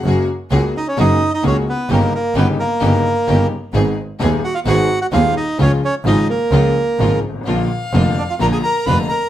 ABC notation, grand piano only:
X:1
M:4/4
L:1/16
Q:1/4=129
K:F#
V:1 name="Grand piano" clef=bass
[F,,C,F,G,A,F]2 z2 [C,,C,G,A,F]2 z2 [F,,C,F,G,A,F]2 z2 [C,,C,G,A,F]2 z2 | [=G,,,=G,,C,=G,A,D]2 z2 [G,,,G,,C,G,A,D]2 z2 [G,,,G,,C,G,A,D]2 z2 [G,,,G,,C,G,A,D]2 z2 | [G,,,G,,D,G,B,G]2 z2 [D,,,D,,D,G,B,G]2 z2 [G,,,G,,D,G,B,G]2 z2 [D,,,D,,D,G,B,G]2 z2 | [C,,C,E,G,E]2 z2 [G,,,G,,C,E,G,E]2 z2 [C,,C,E,G,E]2 z2 [G,,,G,,C,E,G,E]2 z/2 =G,,,/2 ^G,,,/2 =A,,,/2 |
[A,,,A,,=D,E,A,E]2 z2 [E,,,E,,D,E,A,E]2 z2 [A,,,A,,D,E,A,E]2 z2 [E,,,E,,D,E,A,E]2 z2 |]